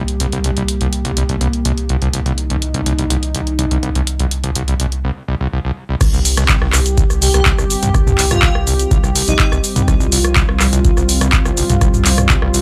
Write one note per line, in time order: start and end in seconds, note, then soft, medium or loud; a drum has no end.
0.00 5.04 C2 medium
0.00 5.00 G3 medium
0.00 5.00 A#3 medium
0.00 2.12 G4 medium
0.08 closed hi-hat soft
0.20 0.27 C2 medium
0.20 closed hi-hat medium
0.32 0.39 C2 medium
0.32 closed hi-hat soft
0.44 0.51 C2 medium
0.44 closed hi-hat medium
0.57 0.63 C2 medium
0.57 closed hi-hat soft
0.68 closed hi-hat medium
0.81 0.87 C2 medium
0.81 closed hi-hat soft
0.93 closed hi-hat medium
1.05 1.12 C2 medium
1.05 closed hi-hat soft
1.17 1.24 C2 medium
1.17 closed hi-hat medium
1.29 1.36 C2 medium
1.29 closed hi-hat soft
1.41 1.48 C2 medium
1.41 closed hi-hat medium
1.53 closed hi-hat soft
1.65 1.72 C2 medium
1.65 closed hi-hat medium
1.78 closed hi-hat soft
1.89 1.96 C2 medium
1.89 closed hi-hat soft
2.02 2.08 C2 medium
2.02 closed hi-hat soft
2.14 2.20 C2 medium
2.14 5.04 D#4 medium
2.14 closed hi-hat medium
2.26 2.32 C2 medium
2.26 closed hi-hat soft
2.38 closed hi-hat medium
2.50 2.57 C2 medium
2.50 closed hi-hat soft
2.62 closed hi-hat medium
2.74 2.81 C2 medium
2.74 closed hi-hat soft
2.86 2.93 C2 medium
2.86 closed hi-hat medium
2.99 3.05 C2 medium
2.99 closed hi-hat soft
3.10 3.17 C2 medium
3.10 closed hi-hat loud
3.23 closed hi-hat soft
3.35 3.41 C2 medium
3.35 closed hi-hat medium
3.47 closed hi-hat soft
3.59 3.66 C2 medium
3.59 closed hi-hat medium
3.71 3.78 C2 medium
3.71 closed hi-hat soft
3.83 3.90 C2 medium
3.83 closed hi-hat soft
3.95 4.02 C2 medium
3.95 closed hi-hat soft
4.07 closed hi-hat medium
4.20 4.26 C2 medium
4.20 closed hi-hat soft
4.31 closed hi-hat medium
4.44 4.50 C2 medium
4.44 closed hi-hat soft
4.56 4.62 C2 medium
4.56 closed hi-hat loud
4.68 4.75 C2 medium
4.68 closed hi-hat soft
4.80 4.87 C2 medium
4.80 closed hi-hat medium
4.92 closed hi-hat soft
5.04 5.11 C2 medium
5.28 5.35 C2 medium
5.41 5.47 C2 medium
5.53 5.59 C2 medium
5.65 5.71 C2 medium
5.89 5.96 C2 medium
6.01 6.56 C2 loud
6.01 12.62 G3 medium
6.01 12.62 C4 medium
6.01 9.86 G4 loud
6.01 kick loud
6.01 cross-stick medium
6.01 closed hi-hat medium
6.01 crash loud
6.01 cabasa soft
6.13 6.20 C2 medium
6.13 cabasa soft
6.25 open hi-hat loud
6.25 cabasa medium
6.37 6.44 C2 medium
6.37 cross-stick medium
6.37 closed hi-hat medium
6.37 cabasa soft
6.49 6.56 C2 medium
6.49 kick loud
6.49 clap loud
6.49 closed hi-hat medium
6.49 cabasa soft
6.62 7.05 C2 medium
6.62 6.68 C2 medium
6.62 cross-stick medium
6.73 6.80 C2 medium
6.73 cross-stick medium
6.73 clap medium
6.73 open hi-hat loud
6.73 cabasa medium
6.86 closed hi-hat medium
6.86 cabasa soft
6.98 7.04 C2 medium
6.98 kick loud
6.98 closed hi-hat medium
6.98 cabasa soft
7.10 7.53 C2 loud
7.10 cross-stick soft
7.10 cabasa soft
7.22 7.29 C2 medium
7.22 7.30 G4 medium
7.22 open hi-hat loud
7.22 cabasa medium
7.34 7.41 C2 medium
7.34 7.42 G4 medium
7.34 cross-stick medium
7.34 closed hi-hat medium
7.34 cabasa soft
7.46 7.53 C2 medium
7.46 kick loud
7.46 clap loud
7.46 closed hi-hat medium
7.46 cabasa soft
7.58 7.76 G1 loud
7.58 7.65 C2 medium
7.58 cross-stick medium
7.58 cabasa soft
7.70 open hi-hat medium
7.70 cabasa medium
7.83 7.91 C2 medium
7.83 7.89 C2 medium
7.83 closed hi-hat medium
7.83 mid tom medium
7.83 cabasa soft
7.94 8.50 C2 loud
7.94 kick loud
7.94 cross-stick medium
7.94 closed hi-hat medium
7.94 cabasa soft
8.07 8.13 C2 medium
8.07 mid tom medium
8.07 cabasa soft
8.18 8.25 C2 medium
8.18 clap medium
8.18 open hi-hat loud
8.18 cabasa medium
8.31 8.37 C2 medium
8.31 8.39 F4 medium
8.31 cross-stick medium
8.31 closed hi-hat medium
8.31 mid tom medium
8.31 cabasa soft
8.42 8.50 C2 medium
8.42 8.51 F4 medium
8.42 kick loud
8.42 clap loud
8.42 closed hi-hat medium
8.42 cabasa soft
8.55 8.86 C2 medium
8.55 cross-stick medium
8.67 8.74 C2 medium
8.67 open hi-hat loud
8.67 cabasa medium
8.79 closed hi-hat medium
8.79 cabasa soft
8.91 8.98 C2 medium
8.91 9.22 C2 medium
8.91 kick loud
8.91 closed hi-hat medium
8.91 cabasa soft
9.04 9.10 C2 medium
9.04 cross-stick soft
9.04 cabasa soft
9.15 9.22 C2 medium
9.15 open hi-hat loud
9.15 cabasa medium
9.28 9.36 A#1 loud
9.28 9.34 C2 medium
9.28 9.35 D#4 medium
9.28 closed hi-hat medium
9.28 cabasa soft
9.39 9.47 D#4 medium
9.39 kick loud
9.39 clap loud
9.39 closed hi-hat medium
9.39 cabasa soft
9.52 9.58 C2 medium
9.52 9.61 C2 medium
9.52 cross-stick medium
9.52 cabasa soft
9.64 open hi-hat loud
9.64 cabasa medium
9.76 9.83 C2 medium
9.76 closed hi-hat medium
9.76 mid tom medium
9.76 cabasa soft
9.88 9.95 C2 medium
9.88 10.43 C2 loud
9.88 12.62 F4 loud
9.88 kick loud
9.88 cross-stick medium
9.88 closed hi-hat medium
9.88 cabasa soft
10.00 10.07 C2 medium
10.00 cabasa soft
10.12 10.19 C2 medium
10.12 open hi-hat loud
10.12 cabasa medium
10.25 cross-stick medium
10.25 cabasa soft
10.36 10.43 C2 medium
10.36 kick loud
10.36 clap loud
10.36 closed hi-hat medium
10.36 cabasa soft
10.49 10.92 C2 medium
10.49 cross-stick medium
10.60 10.67 C2 medium
10.60 cross-stick medium
10.60 clap medium
10.60 open hi-hat loud
10.60 cabasa medium
10.73 10.79 C2 medium
10.73 closed hi-hat medium
10.73 cabasa soft
10.85 10.91 C2 medium
10.85 kick loud
10.85 closed hi-hat medium
10.85 cabasa soft
10.97 11.04 C2 medium
10.97 11.40 C2 loud
10.97 cross-stick soft
10.97 cabasa soft
11.09 open hi-hat loud
11.09 cabasa medium
11.21 11.28 C2 medium
11.21 cross-stick medium
11.21 closed hi-hat medium
11.21 cabasa soft
11.33 kick loud
11.33 clap loud
11.33 closed hi-hat medium
11.33 cabasa soft
11.45 11.63 G1 loud
11.45 11.52 C2 medium
11.45 cross-stick medium
11.45 cabasa soft
11.57 11.64 C2 medium
11.57 open hi-hat loud
11.57 cabasa medium
11.70 11.78 C2 medium
11.70 11.76 C2 medium
11.70 closed hi-hat medium
11.70 mid tom medium
11.70 cabasa soft
11.81 11.88 C2 medium
11.81 12.37 C2 loud
11.81 kick loud
11.81 cross-stick medium
11.81 closed hi-hat soft
11.81 cabasa soft
11.94 mid tom medium
11.94 cabasa soft
12.05 12.12 C2 medium
12.05 clap medium
12.05 open hi-hat loud
12.05 cabasa medium
12.18 cross-stick medium
12.18 closed hi-hat medium
12.18 mid tom medium
12.18 cabasa soft
12.29 12.37 C2 medium
12.29 kick loud
12.29 clap loud
12.29 closed hi-hat medium
12.29 cabasa soft
12.42 12.49 C2 medium
12.42 12.62 C2 loud
12.42 cross-stick medium
12.54 12.61 C2 medium
12.54 open hi-hat loud
12.54 cabasa medium